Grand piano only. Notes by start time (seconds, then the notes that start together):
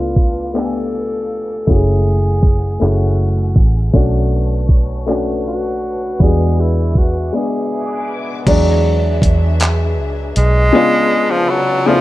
Already playing: A3 B3 D4 F4
0.54 A3 B3 D4 G4
0.63 G#5
1.67 A3 C#4 E4 F#4
1.76 G#4
2.80 A3 C#4 E4 G#4
3.93 A3 C#4 D4 F#4
5.06 A3 C#4 D4 F#4
6.19 G3 B3 D4 F#4
6.26 G#3
7.33 G#3 B3 D4 G#4
8.47 F#3 G#3 D4
10.73 C#3 G#3 B3 D4 F4
11.86 C#3 A3 B3 D4 E4
11.95 F4